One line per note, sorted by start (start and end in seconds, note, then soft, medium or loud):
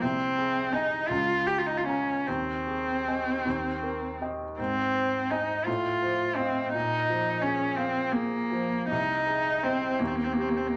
0.02 1.06 C2 soft
0.02 0.74 C4 medium
0.38 0.95 G#4 soft
0.73 1.10 D#4 medium
0.73 1.06 D#5 soft
0.73 1.06 G#5 soft
1.08 2.23 C#2 soft
1.08 1.48 F4 medium
1.46 2.11 F4 soft
1.46 1.59 G4 medium
1.58 1.68 F4 soft
1.66 1.79 D#4 soft
1.77 1.86 F4 soft
1.87 2.29 C#4 soft
1.87 2.23 F5 soft
1.87 2.23 A#5 soft
2.27 3.43 D#2 soft
2.27 4.21 C4 soft
2.67 3.30 G#4 soft
3.08 3.42 D#5 soft
3.08 3.42 G#5 soft
3.46 4.55 D#2 soft
3.83 4.44 A#4 soft
4.22 4.55 D#5 soft
4.22 4.55 G5 soft
4.58 5.64 G#2 soft
4.58 5.32 C4 medium
4.95 5.53 C5 soft
5.30 5.66 D#4 soft
5.30 5.64 D#5 soft
5.30 5.64 G#5 soft
5.65 6.71 A2 soft
5.65 6.38 F4 medium
6.03 6.60 C5 soft
6.36 6.72 C4 soft
6.36 6.70 D#5 soft
6.36 6.71 F5 soft
6.72 8.87 A#2 soft
6.72 7.43 D#4 medium
7.09 7.64 F3 soft
7.42 7.77 C#4 medium
7.42 7.99 G#4 soft
7.76 8.13 C4 medium
7.76 8.36 F5 soft
8.12 8.89 A#3 medium
8.12 8.75 G#4 soft
8.51 8.90 F3 soft
8.90 9.97 C2 soft
8.90 9.65 D#4 medium
9.27 9.85 G#4 soft
9.63 10.01 C4 medium
9.63 9.96 C5 soft
9.63 9.96 D#5 soft
9.99 10.77 D#2 soft
9.99 10.09 A#3 soft
10.07 10.17 C4 soft
10.15 10.26 A#3 soft
10.24 10.34 C4 soft
10.33 10.42 A#3 soft
10.37 10.77 G4 soft
10.41 10.51 C4 soft
10.49 10.58 A#3 soft
10.57 10.69 C4 soft
10.67 10.77 A#3 soft